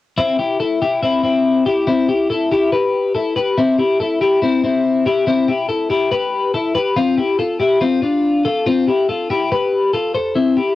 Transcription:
clean electric guitar
0.17 C4 E4
0.39 E4 G4
0.60 E4 A4
0.82 E4 G4
1.03 C4 E4
1.23 C4 E4
1.66 E4 G4
1.87 C4 E4
2.09 E4 G4
2.30 E4 A4
2.52 E4 G4
2.73 G4 B4
3.15 E4 A4
3.36 G4 B4
3.58 C4 E4
3.79 E4 G4
4.00 E4 A4
4.21 E4 G4
4.42 C4 E4
4.64 C4 E4
5.06 E4 G4
5.27 C4 E4
5.48 E4 G4
5.69 E4 A4
5.90 E4 G4
6.12 G4 B4
6.54 E4 A4
6.75 G4 B4
6.97 C4 F4
7.18 E4 G4
7.39 F4 A4
7.60 E4 G4
7.81 C4 F4
8.02 D4 F4
8.45 F4 A4
8.66 C4 F4
8.87 E4 G4
9.09 F4 A4
9.30 E4 G4
9.52 G4 B4
9.93 F4 A4
10.14 A4 C5
10.35 C4 E4
10.57 E4 G4

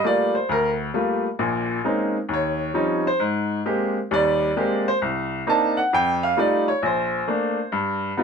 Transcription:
upright piano
0.04 G3 A3 A#3 F4 D5
0.35 C5
0.49 D2 A#4
0.94 G3 A3 A#3 F4
1.39 A#1 A#2
1.84 G#3 A#3 C4 C#4 D#4
2.29 D#2
2.34 C#5
2.74 F3 G3 C4 C#4 D#4
3.07 C5
3.20 G#2
3.66 G#3 A#3 C4 G4
4.11 D#2 G3 D5
4.57 G#3 A#3 C4 G4
4.88 C5
5.02 C2
5.47 A#3 C4 D4 D#4 A5
5.77 F#5
5.93 F2 G5
6.23 F5
6.37 G3 A3 D#4 F4 D5
6.68 C#5
6.82 A#1 C5
7.28 A3 A#3 D4
7.72 G2
8.17 G3 B3 D#4 F4

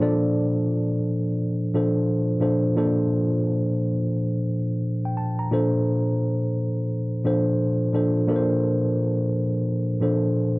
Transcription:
tine electric piano
Already playing: A4 C5
0.00 A#2 F3 D4 A4 D5
1.74 A#2 F3 D4 A4 C5
2.40 A#2 F3 D4 A4 C5
2.76 A#2 F3 D4 A4 C5
5.05 G5
5.17 A5
5.39 A#5
5.51 A#2 F3 D4 A4 C5
7.24 A#2 F3 D4 A4 C5
7.93 A#2 F3 D4 A4 C5
8.27 A#2 F3 D4 A4 A#4
8.36 C5
10.00 A#2 F3 D4 A4 C5

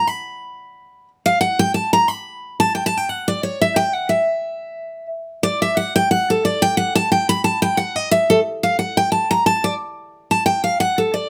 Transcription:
steel-string acoustic guitar
0.07 B5
1.26 F5
1.41 F#5
1.59 G5
1.74 A5
1.93 A#5
2.08 B5
2.60 A5
2.75 G5
2.86 A5
2.97 G5
3.09 F#5
3.28 D5
3.43 C#5
3.62 E5
3.76 G5
3.94 F#5
4.09 E5
5.43 D5
5.62 E5
5.77 F#5
5.96 G5
6.11 F#5
6.30 A4
6.45 D5
6.62 G5
6.77 F#5
6.95 A5
7.12 G5
7.29 B5
7.44 A5
7.62 G5
7.77 F#5
7.96 D#5
8.11 E5
8.30 A4
8.63 F5
8.79 F#5
8.97 G5
9.12 A5
9.31 A#5
9.46 A5
9.64 D5
10.31 A5
10.46 G5
10.64 F5
10.80 F#5
10.98 A4
11.14 D5

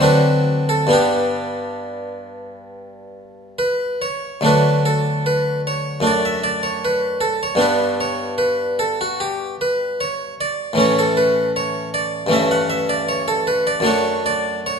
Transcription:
harpsichord
Already playing: D2
0.00 F#3 C4 D4 B4
0.69 A4
0.87 G2 G3 B3 D4
0.93 G4
3.59 B4
4.02 C#5
4.41 D2 F#3 A3 D4
4.46 B4
4.85 A4
5.26 B4
5.67 C#5
6.00 F#2 A3 D4
6.07 D5
6.25 E5
6.44 D5
6.63 C#5
6.85 B4
7.21 A4
7.43 C#5
7.55 G2 G3 B3 D4
7.61 B4
8.01 C#5
8.38 B4
8.79 A4
9.01 F#4
9.20 G4
9.61 B4
10.01 C#5
10.41 D5
10.73 A2 E3 A3
10.78 C#4 C#5
10.99 A4
11.17 B4
11.56 C#5
11.94 D5
12.27 G2 E3 A3
12.31 C#4 E5
12.51 F#5
12.70 E5
12.89 D5
13.09 C#5
13.28 A4
13.47 B4
13.67 D5
13.80 F#2 F#3 A3
13.85 D4 C#5
14.26 D5
14.66 C#5

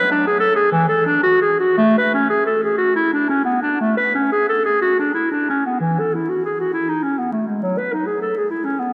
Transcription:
clarinet
Already playing: B4
0.12 D4
0.27 G#4
0.40 A4
0.56 G#4
0.72 E3
0.89 A4
1.06 D4
1.23 F#4
1.41 G#4
1.59 F#4
1.77 A3
1.98 B4
2.14 C#4
2.30 G#4
2.46 A4
2.63 G#4
2.78 F#4
2.96 E4
3.13 D4
3.29 C#4
3.45 B3
3.62 D4
3.80 A3
3.97 B4
4.15 C#4
4.32 G#4
4.49 A4
4.65 G#4
4.81 F#4
4.99 D4
5.14 E4
5.31 D4
5.49 C#4
5.66 B3
5.80 E3
5.99 A4
6.14 E4
6.29 F#4
6.45 G#4
6.60 F#4
6.73 E4
6.89 D#4
7.03 C#4
7.19 B3
7.32 A3
7.48 G#3
7.63 F#3
7.78 B4
7.93 D#4
8.06 G#4
8.22 A4
8.37 G#4
8.50 E4
8.64 C#4
8.79 B3

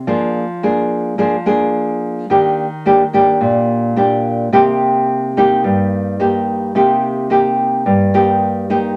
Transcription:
nylon-string guitar
0.07 F3 A#3 D4 G#4
0.63 A#3 D4 G#4
1.18 F3 A#3 D4 G#4
1.46 A#3 D4 G#4
2.30 D#3 A#3 D4 G4
2.86 A#3 D4 G4
3.13 A#3 D4 G4
3.41 A#2
3.96 A#3 D4 G4
4.53 C3 A#3 D#4 G4
5.37 A#3 D#4 G4
5.64 G2
6.20 A#3 D#4 G4
6.75 C3 A#3 D#4 G4
7.30 A#3 D#4 G4
7.86 G2
8.14 A#3 D#4 G4
8.70 A#3 D#4 G4

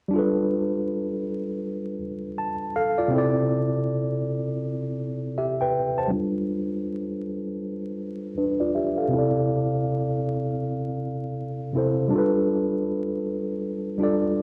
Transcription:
tine electric piano
0.08 G3 D4
0.13 F4 A4
0.19 B4
2.38 A5
2.76 A4 F5
2.98 F4 D5
3.08 C3 C4
3.13 E4 A4
3.18 D5
5.38 G4 E5
5.60 B4 G5
5.98 C5 A5
6.08 G3 D4
6.13 F4 A4
6.18 B4
8.38 D4 B4
8.60 F4 D5
8.75 G4 E5
8.98 A4 F5
9.08 C3 C4
9.13 E4 A4
9.18 D5
11.73 C3 C4 E4 A4
11.78 C5
12.08 G3 D4
12.13 F4 A4
12.18 B4
13.98 G3 D4 F4
14.02 A4 D5

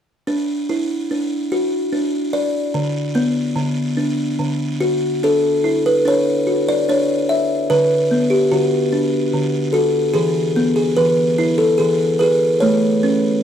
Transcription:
kalimba
0.27 D4
0.69 E4
1.11 D4
1.52 F#4
1.93 D4
2.33 D5
2.74 D3
3.15 B3
3.56 D3
3.97 D4
4.39 D3
4.81 F#4
5.23 D4 A4
5.64 E4
5.86 B4
6.05 D4 C#5
6.47 F#4
6.69 D5
6.89 D4 C#5
7.29 E5
7.70 D3 B4
8.11 B3
8.30 G4
8.52 D3 F#4
8.93 D4
9.33 D3
9.73 F#4 A4
10.14 E3 G#4
10.56 B3
10.76 G#4
10.97 E3 B4
11.38 E4
11.58 A4
11.78 E3 G#4
12.19 G#4 B4
12.60 A3 C#5
13.03 C#4

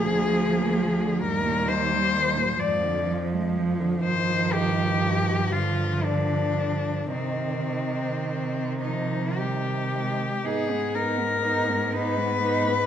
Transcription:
cello
Already playing: D2 F3 G#4
0.09 D3
0.31 F3
0.53 A#3
0.77 F3
1.00 D3
1.22 D#2 G2 G3 A#4
1.45 A#2
1.68 D#3 C5
1.92 G3
2.14 D#3
2.36 A#2
2.60 F2 G#2 F3 D5
2.83 D3
3.09 F3
3.33 G#3
3.57 F3
3.81 D3
4.04 G2 D#3 C5
4.52 G4
5.51 D3 F3 F4
6.04 D4
7.14 C3 D#3 C4
8.81 F3 D#4
9.37 G3 G4
9.94 G#3
10.44 G#2 B3 D#4 G#4
10.70 G#3 B3
10.94 B3 D#4 A#4
11.18 G#3 B3
11.43 B3 D#4
11.67 G#3 B3
11.92 B3 D#4 B4
12.17 G#3 B3
12.41 B3 D#4
12.66 G#3 B3

